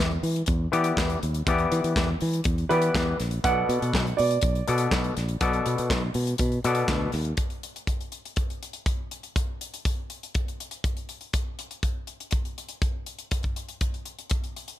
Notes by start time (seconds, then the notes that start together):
Already playing: E3 B3 G4 D5
0.00 E2, snare, clap
0.23 E3, open hi-hat
0.36 closed hi-hat
0.46 E2, kick, closed hi-hat
0.72 E3 B3 G4 D5, closed hi-hat
0.84 closed hi-hat
0.97 E2, kick, snare, clap
1.10 closed hi-hat
1.23 D#2, closed hi-hat
1.34 closed hi-hat
1.47 E2 E3 B3 G4 D5, kick, closed hi-hat
1.58 closed hi-hat
1.72 E3, closed hi-hat
1.84 E3, closed hi-hat
1.96 E2, kick, snare, clap
2.21 E3, open hi-hat
2.33 closed hi-hat
2.44 E2, kick, closed hi-hat
2.58 closed hi-hat
2.69 E3 B3 G4 B4 D5, closed hi-hat
2.82 closed hi-hat
2.95 E2, kick, snare, clap
3.20 A#1, snare, closed hi-hat
3.31 closed hi-hat
3.44 B1 B2 B3 A4 D5 F#5, kick, closed hi-hat
3.69 B2, closed hi-hat
3.82 B2, closed hi-hat
3.94 B1, kick, snare, clap
4.07 closed hi-hat
4.17 B2 D5, open hi-hat
4.31 closed hi-hat
4.41 B1, kick, closed hi-hat
4.55 closed hi-hat
4.68 B2 B3 A4 D5, closed hi-hat
4.78 closed hi-hat
4.91 B1, kick, snare, clap
5.04 closed hi-hat
5.17 A#1, snare, closed hi-hat
5.29 closed hi-hat
5.41 B1 B2 B3 A4 D5, kick, closed hi-hat
5.53 closed hi-hat
5.66 B2, closed hi-hat
5.78 B2, closed hi-hat
5.90 B1, kick, snare, clap
6.14 B2, open hi-hat
6.27 closed hi-hat
6.38 B2, kick, closed hi-hat
6.52 closed hi-hat
6.64 B2 B3 A4 D5, closed hi-hat
6.75 closed hi-hat
6.88 D2, kick, snare, clap
7.12 D#2, snare, open hi-hat
7.25 closed hi-hat
7.37 kick, closed hi-hat
7.50 closed hi-hat
7.63 closed hi-hat
7.76 closed hi-hat
7.87 kick, closed hi-hat
8.01 closed hi-hat
8.12 closed hi-hat
8.25 closed hi-hat
8.36 kick, closed hi-hat
8.50 closed hi-hat
8.63 closed hi-hat
8.73 closed hi-hat
8.86 kick, closed hi-hat
9.11 closed hi-hat
9.23 closed hi-hat
9.36 kick, closed hi-hat
9.61 closed hi-hat
9.74 closed hi-hat
9.85 kick, closed hi-hat
10.10 closed hi-hat
10.23 closed hi-hat
10.35 kick, closed hi-hat
10.48 closed hi-hat
10.60 closed hi-hat
10.71 closed hi-hat
10.84 kick, closed hi-hat
10.97 closed hi-hat
11.09 closed hi-hat
11.21 closed hi-hat
11.33 kick, closed hi-hat
11.59 closed hi-hat
11.71 closed hi-hat
11.83 kick, closed hi-hat
12.07 closed hi-hat
12.20 closed hi-hat
12.31 kick, closed hi-hat
12.45 closed hi-hat
12.58 closed hi-hat
12.69 closed hi-hat
12.82 kick, closed hi-hat
13.06 closed hi-hat
13.19 closed hi-hat
13.31 kick, closed hi-hat
13.43 kick, closed hi-hat
13.56 closed hi-hat
13.69 closed hi-hat
13.81 kick, closed hi-hat
13.94 closed hi-hat
14.05 closed hi-hat
14.19 closed hi-hat
14.30 kick, closed hi-hat
14.44 closed hi-hat
14.56 closed hi-hat
14.68 closed hi-hat